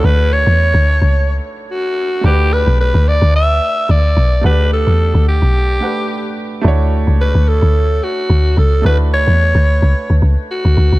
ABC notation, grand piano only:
X:1
M:4/4
L:1/8
Q:"Swing 16ths" 1/4=109
K:D
V:1 name="Grand piano"
[A,DEFc]6- [A,DEFc] z | [A,DFGB]8 | [A,DGdf]4- [A,DGdf] [A,DGBf]3 | [A,DEFc]8 |
[A,DEFB]8 |]